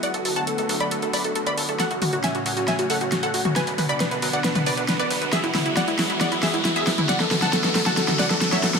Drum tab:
HH |xxoxxxoxxxoxxxox|xxoxxxoxxxoxxxo-|xxoxxxoxxxoxxxox|xxoxxxoxxxoxxxox|
SD |----------------|o---o---o---o---|o---o---o---o---|o-o-o-o-o-o-o-o-|
T2 |----------------|--o------------o|--o------o------|--o------------o|

HH |xxoxxxoxxxoxxxox|
SD |oooooooooooooooo|
T2 |--o------o------|